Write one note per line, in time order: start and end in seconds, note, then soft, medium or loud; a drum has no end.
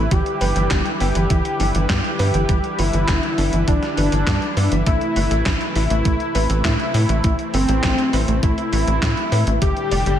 0.00 9.58 E3 medium
0.00 0.13 E4 loud
0.00 9.58 E4 medium
0.00 7.20 B4 medium
0.11 0.23 G1 loud
0.11 4.83 D3 medium
0.11 0.19 E3 medium
0.11 0.25 G3 medium
0.11 4.83 G3 medium
0.11 0.89 G4 loud
0.11 kick loud
0.11 closed hi-hat medium
0.26 closed hi-hat soft
0.41 0.53 G1 loud
0.41 0.45 E3 medium
0.41 0.65 B4 loud
0.41 open hi-hat medium
0.56 0.68 G1 medium
0.56 0.60 E3 medium
0.56 closed hi-hat medium
0.71 0.83 G1 loud
0.71 0.99 G3 loud
0.71 0.78 B3 medium
0.71 kick loud
0.71 snare loud
0.71 clap medium
0.71 closed hi-hat medium
0.86 closed hi-hat soft
1.00 1.13 G1 loud
1.00 1.08 B3 medium
1.00 1.78 G4 loud
1.00 1.14 B4 medium
1.00 open hi-hat medium
1.15 1.27 G1 medium
1.15 1.23 E3 loud
1.15 closed hi-hat medium
1.30 1.42 G1 loud
1.30 1.38 E3 medium
1.30 1.54 E4 medium
1.30 kick loud
1.30 closed hi-hat medium
1.45 closed hi-hat soft
1.60 1.72 G1 loud
1.60 1.64 E3 medium
1.60 1.83 D4 medium
1.60 open hi-hat medium
1.75 1.87 G1 medium
1.75 1.79 E3 medium
1.75 closed hi-hat soft
1.89 2.02 G2 loud
1.89 2.04 G3 medium
1.89 1.97 B3 medium
1.89 2.80 G4 loud
1.89 kick loud
1.89 snare loud
1.89 clap loud
1.89 closed hi-hat medium
2.04 closed hi-hat soft
2.19 2.31 G2 loud
2.19 2.27 B3 medium
2.19 2.43 B4 loud
2.19 open hi-hat medium
2.34 2.46 G1 medium
2.34 2.41 E3 loud
2.34 closed hi-hat medium
2.49 2.61 G1 loud
2.49 2.56 E3 medium
2.49 2.77 G3 loud
2.49 kick loud
2.49 closed hi-hat medium
2.64 closed hi-hat soft
2.79 2.91 G1 medium
2.79 2.83 E3 medium
2.79 3.56 E4 loud
2.79 2.93 B4 medium
2.79 open hi-hat medium
2.93 3.06 G1 medium
2.93 2.98 E3 medium
2.93 closed hi-hat soft
3.08 3.20 G1 loud
3.08 3.16 B3 medium
3.08 3.32 E4 medium
3.08 kick loud
3.08 snare loud
3.08 clap medium
3.08 closed hi-hat medium
3.23 closed hi-hat soft
3.38 3.50 G1 loud
3.38 3.45 B3 medium
3.38 3.61 D4 medium
3.38 open hi-hat medium
3.53 3.65 G1 medium
3.53 3.60 E3 loud
3.53 closed hi-hat medium
3.68 3.80 G1 loud
3.68 3.75 E3 medium
3.68 3.82 G3 medium
3.68 4.75 D4 loud
3.68 kick loud
3.68 closed hi-hat medium
3.83 snare soft
3.83 closed hi-hat soft
3.97 4.10 G1 loud
3.97 4.02 E3 medium
3.97 4.21 B4 loud
3.97 open hi-hat medium
4.12 4.25 G1 medium
4.12 4.17 E3 medium
4.12 closed hi-hat soft
4.27 4.39 G2 loud
4.27 4.55 G3 loud
4.27 4.34 B3 medium
4.27 kick loud
4.27 snare loud
4.27 clap medium
4.27 closed hi-hat medium
4.42 closed hi-hat soft
4.57 4.69 G2 loud
4.57 4.64 B3 medium
4.57 4.71 B4 medium
4.57 open hi-hat medium
4.72 4.84 G1 medium
4.72 4.79 E3 loud
4.72 closed hi-hat medium
4.86 4.99 A1 loud
4.86 9.58 C3 medium
4.86 4.94 A3 medium
4.86 9.58 A3 medium
4.86 5.15 A3 loud
4.86 5.64 E4 loud
4.86 kick loud
4.86 closed hi-hat medium
5.01 closed hi-hat soft
5.16 5.28 G1 medium
5.16 5.21 A3 medium
5.16 5.30 B4 medium
5.16 open hi-hat medium
5.31 5.43 A1 medium
5.31 5.35 A3 medium
5.31 closed hi-hat soft
5.46 5.58 A1 loud
5.46 5.53 E4 medium
5.46 5.69 E4 medium
5.46 kick loud
5.46 snare loud
5.46 clap loud
5.46 closed hi-hat medium
5.61 closed hi-hat soft
5.75 5.88 A1 loud
5.75 5.83 E4 medium
5.75 6.53 E4 loud
5.75 5.90 B4 medium
5.75 open hi-hat medium
5.90 6.03 A1 medium
5.90 5.98 A3 loud
5.90 closed hi-hat medium
6.05 6.17 A1 loud
6.05 6.13 A3 medium
6.05 6.19 A3 medium
6.05 kick loud
6.05 closed hi-hat soft
6.20 closed hi-hat soft
6.35 6.47 A1 loud
6.35 6.39 A3 medium
6.35 6.59 B4 loud
6.35 open hi-hat medium
6.50 6.62 A1 medium
6.50 6.54 A3 medium
6.50 closed hi-hat medium
6.65 6.77 A2 loud
6.65 6.93 A3 loud
6.65 6.72 E4 medium
6.65 7.42 E4 loud
6.65 kick loud
6.65 snare loud
6.65 clap medium
6.65 closed hi-hat soft
6.80 closed hi-hat soft
6.94 7.06 A2 loud
6.94 7.02 E4 medium
6.94 7.09 B4 medium
6.94 open hi-hat medium
7.09 7.21 A1 medium
7.09 7.17 A3 loud
7.09 closed hi-hat medium
7.24 7.36 A1 loud
7.24 7.32 A3 medium
7.24 9.59 C4 medium
7.24 7.48 E4 medium
7.24 kick loud
7.24 closed hi-hat medium
7.39 closed hi-hat soft
7.54 7.66 G1 medium
7.54 7.58 A3 medium
7.54 8.31 C4 loud
7.54 7.68 B4 medium
7.54 open hi-hat medium
7.69 7.81 A1 medium
7.69 7.73 A3 medium
7.69 closed hi-hat medium
7.83 7.96 A1 loud
7.83 7.98 A3 medium
7.83 7.91 E4 medium
7.83 kick loud
7.83 snare loud
7.83 clap medium
7.83 closed hi-hat medium
7.98 closed hi-hat soft
8.13 8.25 A1 medium
8.13 8.21 E4 medium
8.13 8.37 B4 loud
8.13 open hi-hat medium
8.28 8.40 A1 medium
8.28 8.36 A3 loud
8.28 closed hi-hat medium
8.43 8.55 A1 loud
8.43 8.50 A3 medium
8.43 8.71 A3 loud
8.43 9.50 E4 loud
8.43 kick loud
8.43 closed hi-hat soft
8.58 closed hi-hat soft
8.73 8.85 A1 loud
8.73 8.77 A3 medium
8.73 8.87 B4 medium
8.73 open hi-hat medium
8.87 9.00 A1 medium
8.87 8.92 A3 medium
8.87 closed hi-hat soft
9.02 9.14 A2 loud
9.02 9.10 E4 medium
9.02 9.26 E4 medium
9.02 kick loud
9.02 snare loud
9.02 clap medium
9.02 closed hi-hat medium
9.17 closed hi-hat soft
9.32 9.44 A2 loud
9.32 9.39 E4 medium
9.32 9.46 B4 medium
9.32 open hi-hat medium
9.47 9.59 A1 medium
9.47 9.54 A3 loud
9.47 closed hi-hat medium
9.62 9.74 G1 loud
9.62 10.19 A2 medium
9.62 10.19 D3 medium
9.62 9.69 G3 medium
9.62 9.76 G3 medium
9.62 10.19 G3 medium
9.62 10.19 D4 medium
9.62 10.19 G4 medium
9.62 10.19 G4 loud
9.62 kick loud
9.62 closed hi-hat medium
9.77 closed hi-hat soft
9.91 10.04 F1 medium
9.91 9.96 G3 medium
9.91 10.15 D5 loud
9.91 open hi-hat medium
10.06 10.18 G1 medium
10.06 10.11 G3 medium
10.06 closed hi-hat medium